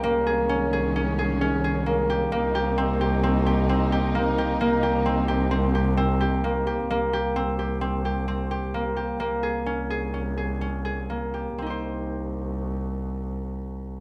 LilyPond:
<<
  \new Staff \with { instrumentName = "Harp" } { \time 5/4 \key c \phrygian \tempo 4 = 131 bes8 aes'8 des'8 aes'8 des'8 aes'8 des'8 aes'8 bes8 g'8 | bes8 g'8 c'8 g'8 c'8 g'8 c'8 g'8 bes8 g'8 | bes8 g'8 c'8 g'8 c'8 g'8 c'8 g'8 bes8 g'8 | bes8 g'8 c'8 g'8 c'8 g'8 c'8 g'8 bes8 g'8 |
bes8 aes'8 des'8 aes'8 des'8 aes'8 des'8 aes'8 bes8 g'8 | <c' ees' g' c''>1~ <c' ees' g' c''>4 | }
  \new Staff \with { instrumentName = "String section" } { \clef bass \time 5/4 \key c \phrygian << { <aes des'>1~ <aes des'>4 | <bes ees'>1~ <bes ees'>4~ | <bes ees'>1~ <bes ees'>4 | r1 r4 |
r1 r4 | r1 r4 | } \\ { ees1~ ees4 | c1~ c4 | c1~ c4 | r1 r4 |
r1 r4 | r1 r4 | } >> }
  \new Staff \with { instrumentName = "Double bass" } { \clef bass \time 5/4 \key c \phrygian c,1~ c,4 | c,1~ c,4 | c,1~ c,4 | c,1~ c,4 |
c,1~ c,4 | c,1~ c,4 | }
>>